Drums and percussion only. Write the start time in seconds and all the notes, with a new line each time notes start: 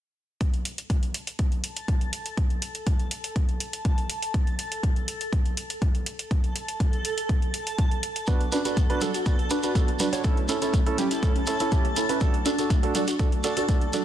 0.41 kick, closed hi-hat
0.54 closed hi-hat
0.65 closed hi-hat
0.78 closed hi-hat
0.90 kick, closed hi-hat
1.03 closed hi-hat
1.14 closed hi-hat
1.27 closed hi-hat
1.39 kick, closed hi-hat
1.52 closed hi-hat
1.64 closed hi-hat
1.77 closed hi-hat
1.88 kick, closed hi-hat
2.01 closed hi-hat
2.13 closed hi-hat
2.26 closed hi-hat
2.37 kick, closed hi-hat
2.50 closed hi-hat
2.62 closed hi-hat
2.75 closed hi-hat
2.87 kick, closed hi-hat
2.99 closed hi-hat
3.11 closed hi-hat
3.24 closed hi-hat
3.36 kick, closed hi-hat
3.49 closed hi-hat
3.60 closed hi-hat
3.73 closed hi-hat
3.85 kick, closed hi-hat
3.98 closed hi-hat
4.10 closed hi-hat
4.22 closed hi-hat
4.34 kick, closed hi-hat
4.47 closed hi-hat
4.59 closed hi-hat
4.72 closed hi-hat
4.83 kick, closed hi-hat
4.96 closed hi-hat
5.08 closed hi-hat
5.21 closed hi-hat
5.33 kick, closed hi-hat
5.46 closed hi-hat
5.57 closed hi-hat
5.70 closed hi-hat
5.82 kick, closed hi-hat
5.95 closed hi-hat
6.06 closed hi-hat
6.19 closed hi-hat
6.31 kick, closed hi-hat
6.44 closed hi-hat
6.56 closed hi-hat
6.68 closed hi-hat
6.80 kick, closed hi-hat
6.93 closed hi-hat
7.05 closed hi-hat
7.18 closed hi-hat
7.29 kick, closed hi-hat
7.42 closed hi-hat
7.54 closed hi-hat
7.67 closed hi-hat
7.78 kick, closed hi-hat
7.91 closed hi-hat
8.03 closed hi-hat
8.16 closed hi-hat
8.27 kick, closed hi-hat, shekere
8.41 closed hi-hat
8.52 closed hi-hat, high conga, shekere
8.65 closed hi-hat, shekere
8.77 kick, closed hi-hat, shekere
8.90 closed hi-hat
9.01 closed hi-hat, low conga, shekere
9.14 closed hi-hat, shekere
9.26 kick, closed hi-hat, shekere
9.39 closed hi-hat
9.50 closed hi-hat, shekere
9.63 closed hi-hat, shekere
9.75 kick, closed hi-hat, shekere
9.88 closed hi-hat
9.99 closed hi-hat, low conga, shekere
10.13 closed hi-hat, shekere
10.24 kick, closed hi-hat, shekere
10.37 closed hi-hat
10.49 closed hi-hat, high conga, shekere
10.62 closed hi-hat, shekere
10.73 kick, closed hi-hat, shekere
10.86 closed hi-hat
10.98 closed hi-hat, low conga, shekere
11.11 closed hi-hat, shekere
11.23 kick, closed hi-hat, shekere
11.36 closed hi-hat, high conga
11.47 closed hi-hat, shekere
11.59 closed hi-hat, shekere
11.71 kick, closed hi-hat, shekere
11.85 closed hi-hat
11.96 closed hi-hat, shekere
12.09 closed hi-hat, shekere
12.20 kick, closed hi-hat, shekere
12.34 closed hi-hat
12.46 closed hi-hat, high conga, shekere
12.59 closed hi-hat, shekere
12.70 kick, closed hi-hat, shekere
12.83 closed hi-hat
12.95 closed hi-hat, low conga, shekere
13.07 closed hi-hat, shekere
13.19 kick, closed hi-hat, shekere
13.32 closed hi-hat
13.44 closed hi-hat, shekere
13.57 closed hi-hat, shekere
13.68 kick, closed hi-hat, shekere
13.81 closed hi-hat
13.93 closed hi-hat, low conga, shekere